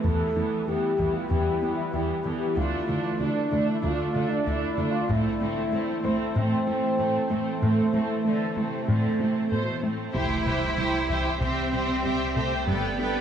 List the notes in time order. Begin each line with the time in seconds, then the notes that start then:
0.03 E2 E3 G3 B3 E4 A4 B4, taiko
0.35 E2 E3 B3
0.67 E2 E3 B3 G4
0.99 E2 E3 B3, taiko
1.15 F4
1.29 E2 E3 B3 G4
1.62 E2 E3 B3
1.74 E4
1.93 E2 E3 B3 E4 G4
2.25 E2 E3 B3 A4
2.37 G4
2.56 D2 D3 A3 D4 F4 A4 D5
2.88 D2 D3 A3 D4
3.19 D2 D3 A3 D4
3.50 D2 D3 A3 D4
3.71 E4
3.82 D2 D3 A3 D4
3.86 F4
4.14 D2 D3 A3 D4
4.29 D4
4.45 D2 A3 D4
4.49 E4
4.77 D2 D3 A3 D4
4.91 F4
5.09 A2 E3 A3 C4 E4 A4 C5, taiko
5.41 A2 A3 C4 E4
5.73 A2 A3 C4
6.04 A2 A3 C4 E4 C5, taiko
6.36 A2 A3 C4
6.67 A2 A3 C4 E4
6.99 A2 A3 C4 A4
7.30 A2 A3 C4 E4
7.62 A2 A3 C4
7.93 A2 A3 C4 E4
8.25 D3 A3 C4
8.57 C3 A3 C4 E4
8.88 A2 D3 A3 C4
9.20 C3 A3 C4 E4
9.51 A2 B2 A3 A4 C5
9.82 A2 A3 C4 E4
10.14 C2 C3 G3 C4 E4 G4 C5 E5 G5, taiko, impact
10.45 C3 G3 G4 B4 C5 E5 G5
10.77 C2 C3 G3 G4 C5 E5 G5
11.09 C2 E3 E4 G4 C5 E5 G5
11.40 C2 C3 C4 G4 C5 E5 G5
11.72 C3 G3 G4 C5 E5 G5
12.03 C2 C3 G3 G4 C5 E5 G5
12.35 C3 G3 A3 G4 A4 C5 E5 G5
12.66 G1 G2 G3 A3 B3 D4 A4 B4 D5 G5
12.98 G3 D4 A4 B4 D5 G5